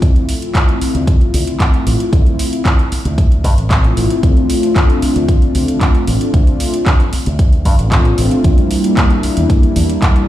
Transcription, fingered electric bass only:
0, 0, Header, 1, 3, 480
1, 0, Start_track
1, 0, Key_signature, -1, "minor"
1, 0, Tempo, 526316
1, 21, Time_signature, 4, 2, 24, 8
1, 9375, End_track
2, 0, Start_track
2, 0, Title_t, "Fingered electric bass"
2, 0, Program_c, 0, 33
2, 21, Note_on_c, 0, 38, 90
2, 103, Note_off_c, 0, 38, 0
2, 864, Note_on_c, 0, 38, 73
2, 942, Note_off_c, 0, 38, 0
2, 1222, Note_on_c, 0, 38, 93
2, 1304, Note_off_c, 0, 38, 0
2, 1700, Note_on_c, 0, 33, 88
2, 1783, Note_off_c, 0, 33, 0
2, 1940, Note_on_c, 0, 38, 89
2, 2022, Note_off_c, 0, 38, 0
2, 2783, Note_on_c, 0, 38, 75
2, 3141, Note_off_c, 0, 38, 0
2, 3141, Note_on_c, 0, 43, 81
2, 3223, Note_off_c, 0, 43, 0
2, 3267, Note_on_c, 0, 33, 90
2, 3561, Note_off_c, 0, 33, 0
2, 3623, Note_on_c, 0, 33, 75
2, 3704, Note_off_c, 0, 33, 0
2, 3860, Note_on_c, 0, 38, 86
2, 3943, Note_off_c, 0, 38, 0
2, 4705, Note_on_c, 0, 38, 75
2, 4783, Note_off_c, 0, 38, 0
2, 5062, Note_on_c, 0, 38, 89
2, 5144, Note_off_c, 0, 38, 0
2, 5542, Note_on_c, 0, 33, 88
2, 5624, Note_off_c, 0, 33, 0
2, 5782, Note_on_c, 0, 38, 94
2, 5864, Note_off_c, 0, 38, 0
2, 6628, Note_on_c, 0, 38, 78
2, 6982, Note_off_c, 0, 38, 0
2, 6982, Note_on_c, 0, 43, 84
2, 7064, Note_off_c, 0, 43, 0
2, 7107, Note_on_c, 0, 33, 95
2, 7401, Note_off_c, 0, 33, 0
2, 7464, Note_on_c, 0, 33, 83
2, 7545, Note_off_c, 0, 33, 0
2, 7702, Note_on_c, 0, 40, 95
2, 7784, Note_off_c, 0, 40, 0
2, 8548, Note_on_c, 0, 40, 74
2, 8625, Note_off_c, 0, 40, 0
2, 8903, Note_on_c, 0, 40, 94
2, 8984, Note_off_c, 0, 40, 0
2, 9375, End_track
3, 0, Start_track
3, 0, Title_t, "Muted fingered electric bass strokes"
3, 743, Note_on_c, 9, 29, 36
3, 835, Note_off_c, 9, 29, 0
3, 2663, Note_on_c, 9, 29, 38
3, 2754, Note_off_c, 9, 29, 0
3, 4583, Note_on_c, 9, 29, 39
3, 4675, Note_off_c, 9, 29, 0
3, 6503, Note_on_c, 9, 29, 38
3, 6594, Note_off_c, 9, 29, 0
3, 8423, Note_on_c, 9, 29, 38
3, 8514, Note_off_c, 9, 29, 0
3, 9375, End_track
0, 0, End_of_file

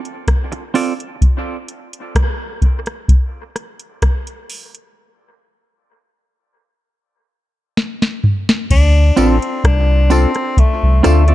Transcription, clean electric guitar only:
0, 0, Header, 1, 3, 480
1, 0, Start_track
1, 0, Key_signature, -1, "minor"
1, 0, Tempo, 936037
1, 623, Time_signature, 4, 2, 24, 8
1, 5818, End_track
2, 0, Start_track
2, 0, Title_t, "Clean electric guitar"
2, 0, Program_c, 0, 27
2, 380, Note_on_c, 0, 60, 78
2, 384, Note_on_c, 0, 65, 84
2, 386, Note_on_c, 0, 69, 80
2, 388, Note_on_c, 0, 74, 92
2, 472, Note_off_c, 0, 60, 0
2, 474, Note_off_c, 0, 65, 0
2, 475, Note_off_c, 0, 69, 0
2, 476, Note_off_c, 0, 74, 0
2, 4700, Note_on_c, 0, 60, 91
2, 4702, Note_on_c, 0, 65, 80
2, 4706, Note_on_c, 0, 69, 86
2, 4707, Note_on_c, 0, 74, 94
2, 4792, Note_off_c, 0, 60, 0
2, 4793, Note_off_c, 0, 65, 0
2, 4795, Note_off_c, 0, 69, 0
2, 4796, Note_off_c, 0, 74, 0
2, 5179, Note_on_c, 0, 60, 89
2, 5183, Note_on_c, 0, 65, 85
2, 5185, Note_on_c, 0, 69, 90
2, 5187, Note_on_c, 0, 74, 94
2, 5271, Note_off_c, 0, 60, 0
2, 5273, Note_off_c, 0, 65, 0
2, 5275, Note_off_c, 0, 69, 0
2, 5275, Note_off_c, 0, 74, 0
2, 5657, Note_on_c, 0, 60, 84
2, 5659, Note_on_c, 0, 65, 89
2, 5663, Note_on_c, 0, 69, 99
2, 5663, Note_on_c, 0, 74, 93
2, 5750, Note_off_c, 0, 60, 0
2, 5751, Note_off_c, 0, 65, 0
2, 5753, Note_off_c, 0, 69, 0
2, 5753, Note_off_c, 0, 74, 0
2, 5784, Note_on_c, 0, 74, 55
2, 5787, Note_on_c, 0, 69, 54
2, 5788, Note_on_c, 0, 65, 48
2, 5791, Note_on_c, 0, 60, 45
2, 5818, Note_off_c, 0, 60, 0
2, 5818, Note_off_c, 0, 65, 0
2, 5818, Note_off_c, 0, 69, 0
2, 5818, Note_off_c, 0, 74, 0
2, 5818, End_track
3, 0, Start_track
3, 0, Title_t, "Muted clean electric guitar strokes"
3, 266, Note_on_c, 9, 29, 43
3, 317, Note_off_c, 9, 29, 0
3, 5818, End_track
0, 0, End_of_file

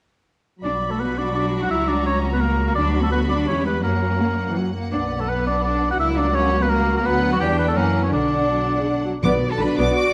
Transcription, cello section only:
0, 0, Header, 1, 2, 480
1, 0, Start_track
1, 0, Key_signature, 2, "minor"
1, 0, Tempo, 356718
1, 858, Time_signature, 3, 2, 24, 8
1, 10451, Tempo, 363636
1, 13576, End_track
2, 0, Start_track
2, 0, Title_t, "Cello section"
2, 0, Program_c, 0, 48
2, 854, Note_on_c, 0, 62, 45
2, 961, Note_off_c, 0, 62, 0
2, 1218, Note_on_c, 0, 57, 39
2, 1337, Note_on_c, 0, 59, 42
2, 1338, Note_off_c, 0, 57, 0
2, 1574, Note_on_c, 0, 62, 46
2, 1580, Note_off_c, 0, 59, 0
2, 1800, Note_off_c, 0, 62, 0
2, 1816, Note_on_c, 0, 62, 50
2, 2172, Note_off_c, 0, 62, 0
2, 2178, Note_on_c, 0, 66, 51
2, 2297, Note_on_c, 0, 64, 58
2, 2301, Note_off_c, 0, 66, 0
2, 2537, Note_on_c, 0, 62, 52
2, 2540, Note_off_c, 0, 64, 0
2, 2776, Note_on_c, 0, 61, 58
2, 2778, Note_off_c, 0, 62, 0
2, 3135, Note_off_c, 0, 61, 0
2, 3138, Note_on_c, 0, 59, 53
2, 3252, Note_on_c, 0, 58, 58
2, 3254, Note_off_c, 0, 59, 0
2, 3590, Note_off_c, 0, 58, 0
2, 3606, Note_on_c, 0, 58, 53
2, 3654, Note_off_c, 0, 58, 0
2, 3722, Note_on_c, 0, 62, 60
2, 4073, Note_off_c, 0, 62, 0
2, 4076, Note_on_c, 0, 57, 52
2, 4198, Note_off_c, 0, 57, 0
2, 4198, Note_on_c, 0, 59, 52
2, 4433, Note_on_c, 0, 62, 58
2, 4435, Note_off_c, 0, 59, 0
2, 4678, Note_off_c, 0, 62, 0
2, 4680, Note_on_c, 0, 61, 56
2, 4921, Note_on_c, 0, 59, 51
2, 4923, Note_off_c, 0, 61, 0
2, 5164, Note_on_c, 0, 58, 44
2, 5167, Note_off_c, 0, 59, 0
2, 6130, Note_off_c, 0, 58, 0
2, 6637, Note_on_c, 0, 62, 47
2, 6745, Note_off_c, 0, 62, 0
2, 7000, Note_on_c, 0, 57, 44
2, 7117, Note_on_c, 0, 59, 44
2, 7118, Note_off_c, 0, 57, 0
2, 7352, Note_off_c, 0, 59, 0
2, 7355, Note_on_c, 0, 62, 50
2, 7574, Note_off_c, 0, 62, 0
2, 7590, Note_on_c, 0, 62, 53
2, 7943, Note_off_c, 0, 62, 0
2, 7950, Note_on_c, 0, 66, 57
2, 8066, Note_on_c, 0, 64, 65
2, 8068, Note_off_c, 0, 66, 0
2, 8302, Note_off_c, 0, 64, 0
2, 8305, Note_on_c, 0, 62, 59
2, 8542, Note_on_c, 0, 61, 66
2, 8545, Note_off_c, 0, 62, 0
2, 8893, Note_off_c, 0, 61, 0
2, 8897, Note_on_c, 0, 59, 58
2, 9017, Note_off_c, 0, 59, 0
2, 9021, Note_on_c, 0, 58, 64
2, 9362, Note_off_c, 0, 58, 0
2, 9378, Note_on_c, 0, 58, 61
2, 9493, Note_on_c, 0, 59, 62
2, 9495, Note_off_c, 0, 58, 0
2, 9847, Note_on_c, 0, 54, 55
2, 9852, Note_off_c, 0, 59, 0
2, 9968, Note_on_c, 0, 55, 63
2, 9970, Note_off_c, 0, 54, 0
2, 10065, Note_off_c, 0, 55, 0
2, 10203, Note_on_c, 0, 59, 54
2, 10325, Note_off_c, 0, 59, 0
2, 10325, Note_on_c, 0, 57, 53
2, 10446, Note_on_c, 0, 58, 50
2, 10447, Note_off_c, 0, 57, 0
2, 10808, Note_on_c, 0, 61, 44
2, 10809, Note_off_c, 0, 58, 0
2, 10931, Note_off_c, 0, 61, 0
2, 10933, Note_on_c, 0, 62, 46
2, 12125, Note_off_c, 0, 62, 0
2, 12864, Note_on_c, 0, 62, 59
2, 13303, Note_off_c, 0, 62, 0
2, 13330, Note_on_c, 0, 66, 61
2, 13576, Note_off_c, 0, 66, 0
2, 13576, End_track
0, 0, End_of_file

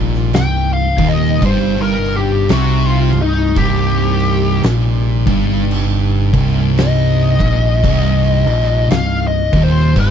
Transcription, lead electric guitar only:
0, 0, Header, 1, 2, 480
1, 0, Start_track
1, 0, Key_signature, -3, "minor"
1, 0, Tempo, 1067616
1, 1599, Time_signature, 4, 2, 24, 8
1, 4543, End_track
2, 0, Start_track
2, 0, Title_t, "Lead electric guitar"
2, 0, Program_c, 0, 29
2, 158, Note_on_c, 0, 79, 110
2, 312, Note_off_c, 0, 79, 0
2, 328, Note_on_c, 0, 77, 78
2, 478, Note_off_c, 0, 77, 0
2, 488, Note_on_c, 0, 75, 97
2, 638, Note_off_c, 0, 75, 0
2, 654, Note_on_c, 0, 72, 92
2, 801, Note_off_c, 0, 72, 0
2, 817, Note_on_c, 0, 70, 89
2, 963, Note_off_c, 0, 70, 0
2, 973, Note_on_c, 0, 67, 101
2, 1121, Note_off_c, 0, 67, 0
2, 1137, Note_on_c, 0, 66, 84
2, 1284, Note_off_c, 0, 66, 0
2, 1289, Note_on_c, 0, 65, 91
2, 1439, Note_off_c, 0, 65, 0
2, 1448, Note_on_c, 0, 63, 93
2, 1599, Note_off_c, 0, 63, 0
2, 1611, Note_on_c, 0, 67, 106
2, 2071, Note_off_c, 0, 67, 0
2, 3054, Note_on_c, 0, 75, 110
2, 3988, Note_off_c, 0, 75, 0
2, 4005, Note_on_c, 0, 77, 95
2, 4157, Note_off_c, 0, 77, 0
2, 4169, Note_on_c, 0, 75, 93
2, 4318, Note_off_c, 0, 75, 0
2, 4332, Note_on_c, 0, 72, 91
2, 4480, Note_off_c, 0, 72, 0
2, 4495, Note_on_c, 0, 72, 117
2, 4543, Note_off_c, 0, 72, 0
2, 4543, End_track
0, 0, End_of_file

